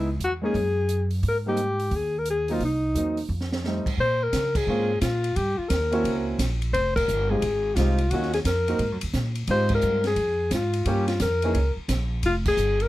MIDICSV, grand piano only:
0, 0, Header, 1, 2, 480
1, 0, Start_track
1, 0, Tempo, 343840
1, 1730, Time_signature, 4, 2, 24, 8
1, 17983, End_track
2, 0, Start_track
2, 0, Title_t, "Grand piano"
2, 0, Program_c, 0, 0
2, 581, Note_on_c, 0, 56, 59
2, 598, Note_on_c, 0, 58, 60
2, 605, Note_on_c, 0, 61, 57
2, 611, Note_on_c, 0, 63, 67
2, 743, Note_off_c, 0, 56, 0
2, 752, Note_off_c, 0, 58, 0
2, 755, Note_off_c, 0, 61, 0
2, 758, Note_off_c, 0, 63, 0
2, 2039, Note_on_c, 0, 55, 60
2, 2049, Note_on_c, 0, 58, 59
2, 2053, Note_on_c, 0, 60, 53
2, 2065, Note_on_c, 0, 63, 70
2, 2192, Note_off_c, 0, 55, 0
2, 2197, Note_off_c, 0, 58, 0
2, 2199, Note_off_c, 0, 60, 0
2, 2205, Note_off_c, 0, 63, 0
2, 3475, Note_on_c, 0, 54, 58
2, 3490, Note_on_c, 0, 58, 58
2, 3497, Note_on_c, 0, 60, 55
2, 3502, Note_on_c, 0, 63, 71
2, 3630, Note_off_c, 0, 54, 0
2, 3637, Note_off_c, 0, 58, 0
2, 3641, Note_off_c, 0, 60, 0
2, 3643, Note_off_c, 0, 63, 0
2, 4120, Note_on_c, 0, 54, 53
2, 4139, Note_on_c, 0, 58, 47
2, 4144, Note_on_c, 0, 60, 47
2, 4149, Note_on_c, 0, 63, 60
2, 4404, Note_off_c, 0, 54, 0
2, 4414, Note_off_c, 0, 58, 0
2, 4416, Note_off_c, 0, 60, 0
2, 4419, Note_off_c, 0, 63, 0
2, 5103, Note_on_c, 0, 55, 57
2, 5104, Note_on_c, 0, 57, 47
2, 5118, Note_on_c, 0, 60, 50
2, 5120, Note_on_c, 0, 63, 60
2, 5376, Note_off_c, 0, 55, 0
2, 5376, Note_off_c, 0, 57, 0
2, 5383, Note_off_c, 0, 60, 0
2, 5385, Note_off_c, 0, 63, 0
2, 6535, Note_on_c, 0, 56, 64
2, 6546, Note_on_c, 0, 58, 57
2, 6550, Note_on_c, 0, 60, 60
2, 6554, Note_on_c, 0, 61, 55
2, 6558, Note_on_c, 0, 65, 66
2, 6812, Note_off_c, 0, 56, 0
2, 6817, Note_off_c, 0, 58, 0
2, 6819, Note_off_c, 0, 60, 0
2, 6821, Note_off_c, 0, 61, 0
2, 6823, Note_off_c, 0, 65, 0
2, 8259, Note_on_c, 0, 58, 66
2, 8262, Note_on_c, 0, 60, 63
2, 8277, Note_on_c, 0, 64, 60
2, 8278, Note_on_c, 0, 61, 63
2, 8289, Note_on_c, 0, 66, 74
2, 8885, Note_off_c, 0, 58, 0
2, 8886, Note_off_c, 0, 60, 0
2, 8894, Note_off_c, 0, 61, 0
2, 8894, Note_off_c, 0, 64, 0
2, 8899, Note_off_c, 0, 66, 0
2, 10196, Note_on_c, 0, 56, 55
2, 10200, Note_on_c, 0, 60, 51
2, 10207, Note_on_c, 0, 63, 46
2, 10214, Note_on_c, 0, 65, 47
2, 10218, Note_on_c, 0, 67, 62
2, 10350, Note_off_c, 0, 56, 0
2, 10352, Note_off_c, 0, 60, 0
2, 10356, Note_off_c, 0, 63, 0
2, 10359, Note_off_c, 0, 65, 0
2, 10361, Note_off_c, 0, 67, 0
2, 10864, Note_on_c, 0, 56, 69
2, 10868, Note_on_c, 0, 60, 61
2, 10873, Note_on_c, 0, 63, 58
2, 10873, Note_on_c, 0, 65, 60
2, 10882, Note_on_c, 0, 67, 73
2, 11136, Note_off_c, 0, 56, 0
2, 11138, Note_off_c, 0, 60, 0
2, 11140, Note_off_c, 0, 63, 0
2, 11140, Note_off_c, 0, 65, 0
2, 11145, Note_off_c, 0, 67, 0
2, 11347, Note_on_c, 0, 58, 63
2, 11358, Note_on_c, 0, 61, 57
2, 11360, Note_on_c, 0, 65, 53
2, 11362, Note_on_c, 0, 63, 57
2, 11368, Note_on_c, 0, 66, 67
2, 11618, Note_off_c, 0, 58, 0
2, 11623, Note_off_c, 0, 61, 0
2, 11624, Note_off_c, 0, 65, 0
2, 11625, Note_off_c, 0, 63, 0
2, 11628, Note_off_c, 0, 66, 0
2, 12122, Note_on_c, 0, 58, 56
2, 12123, Note_on_c, 0, 60, 55
2, 12135, Note_on_c, 0, 63, 57
2, 12140, Note_on_c, 0, 66, 55
2, 12142, Note_on_c, 0, 70, 66
2, 12273, Note_off_c, 0, 58, 0
2, 12273, Note_off_c, 0, 60, 0
2, 12279, Note_off_c, 0, 63, 0
2, 12282, Note_off_c, 0, 66, 0
2, 12283, Note_off_c, 0, 70, 0
2, 13245, Note_on_c, 0, 56, 69
2, 13252, Note_on_c, 0, 63, 63
2, 13255, Note_on_c, 0, 60, 59
2, 13262, Note_on_c, 0, 65, 61
2, 13276, Note_on_c, 0, 67, 71
2, 13975, Note_off_c, 0, 56, 0
2, 13979, Note_off_c, 0, 63, 0
2, 13980, Note_off_c, 0, 60, 0
2, 13984, Note_off_c, 0, 65, 0
2, 13991, Note_off_c, 0, 67, 0
2, 15161, Note_on_c, 0, 55, 70
2, 15175, Note_on_c, 0, 58, 65
2, 15179, Note_on_c, 0, 61, 68
2, 15187, Note_on_c, 0, 65, 68
2, 15197, Note_on_c, 0, 67, 75
2, 15445, Note_off_c, 0, 55, 0
2, 15452, Note_off_c, 0, 58, 0
2, 15454, Note_off_c, 0, 61, 0
2, 15458, Note_off_c, 0, 65, 0
2, 15463, Note_off_c, 0, 67, 0
2, 15964, Note_on_c, 0, 52, 68
2, 15971, Note_on_c, 0, 58, 59
2, 15980, Note_on_c, 0, 61, 62
2, 15983, Note_on_c, 0, 63, 63
2, 15990, Note_on_c, 0, 68, 75
2, 16114, Note_off_c, 0, 52, 0
2, 16118, Note_off_c, 0, 58, 0
2, 16122, Note_off_c, 0, 61, 0
2, 16123, Note_off_c, 0, 63, 0
2, 16127, Note_off_c, 0, 68, 0
2, 17983, End_track
0, 0, End_of_file